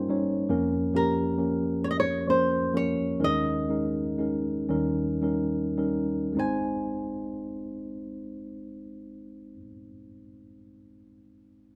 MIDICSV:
0, 0, Header, 1, 3, 480
1, 0, Start_track
1, 0, Key_signature, -4, "major"
1, 0, Tempo, 870827
1, 286, Time_signature, 6, 3, 24, 8
1, 768, Tempo, 911854
1, 1728, Tempo, 978793
1, 2208, Tempo, 1043478
1, 2688, Tempo, 1127820
1, 3168, Tempo, 1171875
1, 5375, End_track
2, 0, Start_track
2, 0, Title_t, "Nylon-string guitar"
2, 0, Program_c, 0, 24
2, 0, Note_on_c, 0, 65, 55
2, 86, Note_off_c, 0, 65, 0
2, 531, Note_on_c, 0, 70, 59
2, 1003, Note_off_c, 0, 70, 0
2, 1005, Note_on_c, 0, 73, 61
2, 1036, Note_off_c, 0, 73, 0
2, 1038, Note_on_c, 0, 75, 56
2, 1076, Note_off_c, 0, 75, 0
2, 1086, Note_on_c, 0, 73, 67
2, 1243, Note_off_c, 0, 73, 0
2, 1245, Note_on_c, 0, 72, 59
2, 1489, Note_off_c, 0, 72, 0
2, 1492, Note_on_c, 0, 73, 64
2, 1716, Note_off_c, 0, 73, 0
2, 1741, Note_on_c, 0, 75, 66
2, 2676, Note_off_c, 0, 75, 0
2, 3179, Note_on_c, 0, 80, 49
2, 4491, Note_off_c, 0, 80, 0
2, 5375, End_track
3, 0, Start_track
3, 0, Title_t, "Tine electric piano"
3, 0, Program_c, 1, 4
3, 0, Control_c, 1, 64, 127
3, 0, Note_on_c, 1, 31, 46
3, 0, Note_on_c, 1, 43, 47
3, 0, Note_on_c, 1, 55, 42
3, 0, Note_on_c, 1, 58, 48
3, 0, Note_on_c, 1, 61, 42
3, 0, Note_on_c, 1, 63, 42
3, 0, Note_on_c, 1, 70, 54
3, 0, Note_on_c, 1, 72, 50
3, 48, Note_off_c, 1, 55, 0
3, 48, Note_on_c, 1, 55, 46
3, 53, Note_off_c, 1, 61, 0
3, 53, Note_on_c, 1, 61, 41
3, 54, Note_off_c, 1, 63, 0
3, 54, Note_on_c, 1, 63, 43
3, 58, Note_on_c, 1, 73, 49
3, 268, Note_off_c, 1, 31, 0
3, 268, Note_off_c, 1, 61, 0
3, 269, Note_off_c, 1, 43, 0
3, 271, Note_on_c, 1, 53, 62
3, 273, Note_off_c, 1, 58, 0
3, 273, Note_on_c, 1, 58, 59
3, 274, Note_on_c, 1, 29, 55
3, 274, Note_on_c, 1, 41, 54
3, 274, Note_on_c, 1, 61, 62
3, 280, Note_off_c, 1, 70, 0
3, 280, Note_on_c, 1, 70, 69
3, 286, Note_off_c, 1, 55, 0
3, 289, Note_off_c, 1, 63, 0
3, 291, Note_off_c, 1, 73, 0
3, 294, Control_c, 1, 64, 0
3, 296, Note_off_c, 1, 72, 0
3, 402, Control_c, 1, 64, 127
3, 470, Note_off_c, 1, 53, 0
3, 471, Note_off_c, 1, 58, 0
3, 471, Note_off_c, 1, 61, 0
3, 474, Note_off_c, 1, 70, 0
3, 518, Note_on_c, 1, 53, 50
3, 521, Note_on_c, 1, 58, 42
3, 522, Note_on_c, 1, 61, 45
3, 526, Note_on_c, 1, 67, 52
3, 675, Note_off_c, 1, 53, 0
3, 677, Note_off_c, 1, 58, 0
3, 678, Note_off_c, 1, 61, 0
3, 679, Note_off_c, 1, 67, 0
3, 760, Note_on_c, 1, 53, 45
3, 761, Note_on_c, 1, 58, 43
3, 764, Note_on_c, 1, 61, 42
3, 768, Note_on_c, 1, 70, 50
3, 1061, Note_off_c, 1, 53, 0
3, 1062, Note_off_c, 1, 58, 0
3, 1063, Note_off_c, 1, 61, 0
3, 1066, Note_off_c, 1, 70, 0
3, 1232, Note_on_c, 1, 53, 41
3, 1238, Note_on_c, 1, 58, 42
3, 1241, Note_on_c, 1, 61, 40
3, 1242, Note_on_c, 1, 70, 49
3, 1388, Note_off_c, 1, 53, 0
3, 1392, Note_off_c, 1, 58, 0
3, 1393, Note_off_c, 1, 61, 0
3, 1393, Note_off_c, 1, 70, 0
3, 1474, Note_on_c, 1, 53, 46
3, 1475, Note_on_c, 1, 58, 41
3, 1478, Note_on_c, 1, 61, 39
3, 1481, Note_on_c, 1, 70, 52
3, 1701, Note_off_c, 1, 29, 0
3, 1701, Note_off_c, 1, 41, 0
3, 1712, Note_off_c, 1, 61, 0
3, 1718, Note_off_c, 1, 70, 0
3, 1718, Note_on_c, 1, 56, 50
3, 1718, Note_on_c, 1, 61, 45
3, 1719, Note_on_c, 1, 39, 42
3, 1722, Note_on_c, 1, 63, 50
3, 1724, Note_off_c, 1, 53, 0
3, 1724, Note_on_c, 1, 51, 42
3, 1724, Note_on_c, 1, 70, 58
3, 1725, Note_off_c, 1, 58, 0
3, 1734, Control_c, 1, 64, 0
3, 1828, Control_c, 1, 64, 127
3, 1912, Note_off_c, 1, 56, 0
3, 1912, Note_off_c, 1, 61, 0
3, 1913, Note_off_c, 1, 63, 0
3, 1915, Note_off_c, 1, 70, 0
3, 1960, Note_on_c, 1, 61, 38
3, 1962, Note_on_c, 1, 56, 41
3, 1966, Note_on_c, 1, 63, 40
3, 1966, Note_on_c, 1, 70, 47
3, 2116, Note_off_c, 1, 61, 0
3, 2117, Note_off_c, 1, 56, 0
3, 2119, Note_off_c, 1, 63, 0
3, 2119, Note_off_c, 1, 70, 0
3, 2200, Note_on_c, 1, 56, 42
3, 2203, Note_on_c, 1, 63, 39
3, 2204, Note_on_c, 1, 61, 37
3, 2212, Note_on_c, 1, 70, 46
3, 2422, Note_off_c, 1, 39, 0
3, 2424, Note_off_c, 1, 51, 0
3, 2429, Note_off_c, 1, 61, 0
3, 2435, Note_on_c, 1, 55, 56
3, 2435, Note_on_c, 1, 61, 52
3, 2436, Note_off_c, 1, 63, 0
3, 2437, Note_off_c, 1, 70, 0
3, 2437, Note_on_c, 1, 39, 45
3, 2440, Note_off_c, 1, 56, 0
3, 2440, Note_on_c, 1, 51, 46
3, 2442, Note_on_c, 1, 63, 47
3, 2443, Note_on_c, 1, 70, 62
3, 2449, Control_c, 1, 64, 0
3, 2520, Control_c, 1, 64, 127
3, 2634, Note_off_c, 1, 55, 0
3, 2634, Note_off_c, 1, 61, 0
3, 2638, Note_off_c, 1, 63, 0
3, 2638, Note_off_c, 1, 70, 0
3, 2677, Note_on_c, 1, 55, 45
3, 2682, Note_on_c, 1, 61, 44
3, 2682, Note_on_c, 1, 63, 42
3, 2688, Note_on_c, 1, 70, 52
3, 2832, Note_off_c, 1, 55, 0
3, 2834, Note_off_c, 1, 61, 0
3, 2834, Note_off_c, 1, 63, 0
3, 2837, Note_off_c, 1, 70, 0
3, 2916, Note_on_c, 1, 55, 44
3, 2917, Note_on_c, 1, 63, 45
3, 2918, Note_on_c, 1, 61, 42
3, 2922, Note_on_c, 1, 70, 54
3, 3149, Note_off_c, 1, 39, 0
3, 3150, Note_off_c, 1, 51, 0
3, 3151, Note_on_c, 1, 56, 48
3, 3161, Note_on_c, 1, 60, 45
3, 3164, Note_off_c, 1, 63, 0
3, 3165, Note_off_c, 1, 55, 0
3, 3165, Note_on_c, 1, 32, 49
3, 3166, Note_off_c, 1, 61, 0
3, 3168, Note_off_c, 1, 70, 0
3, 3169, Note_on_c, 1, 63, 45
3, 3174, Control_c, 1, 64, 0
3, 3176, Note_on_c, 1, 72, 52
3, 3255, Control_c, 1, 64, 127
3, 4464, Note_off_c, 1, 56, 0
3, 4474, Note_off_c, 1, 60, 0
3, 4477, Note_off_c, 1, 32, 0
3, 4482, Note_off_c, 1, 63, 0
3, 4488, Note_off_c, 1, 72, 0
3, 5375, End_track
0, 0, End_of_file